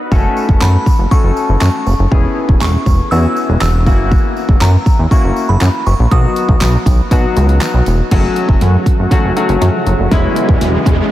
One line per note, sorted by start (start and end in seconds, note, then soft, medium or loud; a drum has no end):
0.11 0.27 F#1 loud
0.11 0.82 A3 medium
0.11 0.82 C#4 medium
0.11 0.82 F#4 medium
0.11 0.82 A4 loud
0.11 kick loud
0.11 tambourine soft
0.37 tambourine soft
0.49 0.56 F#1 loud
0.49 kick medium
0.61 0.77 F#2 loud
0.61 1.13 B5 medium
0.61 snare medium
0.61 clap loud
0.61 tambourine medium
0.86 kick medium
0.86 tambourine soft
0.99 1.07 F#1 medium
1.11 1.82 A3 medium
1.11 1.82 C#4 medium
1.11 1.82 F#4 medium
1.11 1.82 A4 medium
1.11 1.60 C#6 loud
1.11 kick loud
1.11 tambourine soft
1.24 1.32 F#1 medium
1.37 tambourine soft
1.49 1.57 F#1 medium
1.61 1.69 F#2 medium
1.61 2.08 C#6 medium
1.61 snare loud
1.61 clap loud
1.61 tambourine medium
1.86 1.94 F#1 loud
1.86 tambourine soft
1.99 2.07 F#1 medium
2.11 2.27 E1 loud
2.11 2.82 B3 medium
2.11 2.82 C#4 medium
2.11 2.82 E4 medium
2.11 2.82 G#4 medium
2.11 kick loud
2.49 2.56 E1 medium
2.49 kick loud
2.61 2.77 E1 loud
2.61 3.13 C#6 medium
2.61 snare medium
2.61 clap loud
2.61 tambourine medium
2.86 3.01 E1 medium
2.86 kick medium
2.86 tambourine soft
3.11 3.26 E2 loud
3.11 3.82 B3 medium
3.11 3.82 C#4 medium
3.11 3.82 E4 medium
3.11 3.82 F#4 medium
3.11 3.58 E6 loud
3.11 tambourine soft
3.36 tambourine soft
3.49 3.57 E1 medium
3.61 3.88 E1 medium
3.61 4.08 E6 medium
3.61 snare loud
3.61 clap loud
3.61 tambourine medium
3.86 4.17 F#1 medium
3.86 4.66 A#3 medium
3.86 4.66 C#4 medium
3.86 4.67 E4 medium
3.86 4.67 F#4 medium
3.86 kick medium
3.86 tambourine soft
4.12 kick loud
4.12 tambourine soft
4.37 tambourine soft
4.49 4.56 F#1 medium
4.49 kick medium
4.61 4.77 F#2 loud
4.61 5.13 A#5 medium
4.61 snare medium
4.61 clap loud
4.61 tambourine medium
4.86 kick medium
4.86 tambourine soft
4.99 5.07 E2 medium
5.11 5.82 A#3 medium
5.11 5.82 C#4 medium
5.11 5.82 E4 medium
5.11 5.82 F#4 medium
5.11 5.46 C#6 medium
5.11 kick loud
5.11 tambourine soft
5.24 5.32 F#1 medium
5.36 tambourine soft
5.49 5.57 F#1 loud
5.49 5.88 B5 medium
5.61 5.69 F#2 loud
5.61 snare loud
5.61 clap loud
5.61 tambourine medium
5.86 5.94 F#1 medium
5.86 6.12 C#6 loud
5.86 tambourine soft
5.99 6.07 A#1 loud
6.11 6.26 B1 loud
6.11 6.82 F#3 medium
6.11 6.82 B3 medium
6.11 6.82 D#4 medium
6.11 6.82 F#4 medium
6.11 7.58 D#6 loud
6.11 kick loud
6.11 closed hi-hat medium
6.36 closed hi-hat medium
6.36 tambourine soft
6.49 6.56 B1 medium
6.49 kick medium
6.61 6.77 B1 loud
6.61 snare medium
6.61 clap loud
6.61 closed hi-hat medium
6.61 tambourine medium
6.86 7.01 B1 medium
6.86 kick medium
6.86 closed hi-hat medium
6.86 tambourine soft
7.11 7.26 B2 loud
7.11 7.82 F#3 medium
7.11 7.82 B3 medium
7.11 7.82 D#4 medium
7.11 7.82 F#4 medium
7.11 kick loud
7.11 closed hi-hat medium
7.11 tambourine soft
7.36 7.59 C#2 medium
7.36 closed hi-hat medium
7.36 tambourine soft
7.49 closed hi-hat medium
7.61 snare medium
7.61 clap loud
7.61 closed hi-hat loud
7.61 tambourine medium
7.74 7.82 B1 medium
7.86 8.02 E1 medium
7.86 closed hi-hat medium
7.86 tambourine soft
8.11 8.26 F#1 loud
8.11 11.11 C#3 medium
8.11 8.82 F#3 medium
8.11 10.10 F#3 medium
8.11 8.82 A3 medium
8.11 10.10 A3 medium
8.11 8.82 C#4 medium
8.11 10.09 F#4 medium
8.11 8.82 F#4 medium
8.11 kick loud
8.11 snare medium
8.11 closed hi-hat medium
8.11 crash medium
8.11 riser medium
8.36 closed hi-hat medium
8.49 8.56 F#1 loud
8.49 kick loud
8.61 8.77 F#2 medium
8.61 snare medium
8.61 closed hi-hat medium
8.86 kick medium
8.86 closed hi-hat medium
8.99 9.07 F#1 medium
9.11 9.29 F#3 medium
9.11 9.29 A3 medium
9.11 9.29 C#4 medium
9.11 9.29 F#4 loud
9.11 kick loud
9.11 snare medium
9.11 closed hi-hat medium
9.24 9.32 F#1 loud
9.36 9.89 F#3 medium
9.36 9.89 A3 medium
9.36 9.89 C#4 medium
9.36 9.90 F#4 medium
9.36 closed hi-hat medium
9.49 9.57 F#1 medium
9.49 closed hi-hat medium
9.62 9.69 F#2 loud
9.62 snare medium
9.62 closed hi-hat loud
9.86 9.94 F#1 loud
9.86 closed hi-hat medium
9.99 10.07 F#1 medium
10.11 10.26 E1 loud
10.11 11.11 E3 medium
10.11 10.82 G#3 medium
10.11 11.11 G#3 medium
10.11 10.82 B3 medium
10.11 11.11 B3 medium
10.11 10.82 C#4 medium
10.11 10.82 E4 loud
10.11 kick loud
10.11 snare medium
10.11 closed hi-hat medium
10.36 closed hi-hat medium
10.49 10.56 E1 medium
10.49 kick loud
10.61 10.77 E1 loud
10.61 snare medium
10.61 closed hi-hat medium
10.86 11.01 E1 loud
10.86 kick loud
10.86 closed hi-hat medium